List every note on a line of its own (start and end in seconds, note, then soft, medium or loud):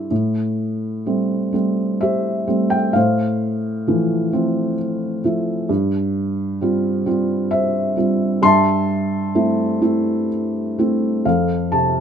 0.00 0.12 E4 soft
0.00 0.13 G4 medium
0.00 0.13 A4 soft
0.11 2.91 A2 medium
1.06 1.51 G3 soft
1.06 1.51 A3 soft
1.06 1.52 C4 soft
1.53 2.45 G3 soft
1.53 2.45 A3 soft
1.53 2.46 C4 soft
2.01 2.92 G4 soft
2.01 2.92 C5 soft
2.01 2.74 E5 medium
2.47 2.94 G3 soft
2.47 2.94 A3 soft
2.47 2.94 C4 soft
2.70 2.95 G5 medium
2.93 5.65 A2 medium
2.93 4.75 C5 soft
2.93 4.73 F5 medium
3.87 4.76 E3 soft
3.87 4.31 F3 soft
3.87 4.31 A3 soft
4.32 5.20 F3 soft
4.32 5.21 A3 soft
4.32 5.21 C4 soft
5.24 5.68 F3 soft
5.24 5.69 A3 soft
5.24 5.69 E4 soft
5.69 8.39 G2 medium
6.61 7.05 G3 soft
6.61 7.05 C4 soft
6.61 7.05 F4 medium
7.06 7.94 G3 soft
7.06 7.94 C4 soft
7.06 7.95 F4 medium
7.51 8.39 C5 soft
7.51 8.38 E5 medium
7.96 8.41 G3 soft
7.96 8.41 C4 soft
7.96 8.42 F4 soft
8.42 11.22 G2 medium
8.42 10.29 E5 medium
8.42 10.29 A5 medium
8.42 10.28 C6 loud
9.35 9.80 A3 medium
9.35 9.80 C4 soft
9.35 9.81 E4 medium
9.82 10.76 A3 soft
9.82 10.76 C4 soft
9.82 10.76 E4 medium
10.79 11.25 A3 soft
10.79 11.25 C4 soft
10.79 11.25 E4 medium
11.25 12.00 F2 medium
11.25 12.00 A4 medium
11.25 11.75 F5 medium
11.72 12.00 C3 soft
11.72 12.00 A5 medium